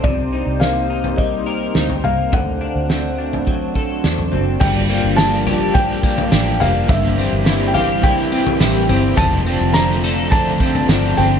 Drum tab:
CC |----------------|----------------|x---------------|----------------|
TB |----------------|----------------|x-x-x-x---x-x-x-|x-x-x-x---x-x-x-|
SD |----o-------o---|----o-------o---|----o-------o---|----o-------o---|
FT |o------o-----oo-|o------o-----oo-|o-----o-o--o--o-|o-----o-o--o--o-|
BD |o-------o-------|o-------o-o-----|o-------o-o-----|o-------o-------|

CC |----------------|
TB |x-x-x-x---x-x-x-|
SD |----o-------o---|
FT |o-------o--o--o-|
BD |o-------o-o-----|